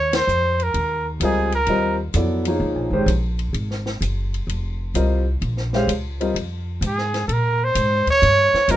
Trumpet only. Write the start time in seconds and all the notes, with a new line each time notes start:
Already playing: C#5
0.16 C5
0.63 A#4
1.24 G#4
1.55 A#4
6.87 G#4
7.27 A4
7.33 A#4
7.64 C5
8.10 C#5
8.71 A#4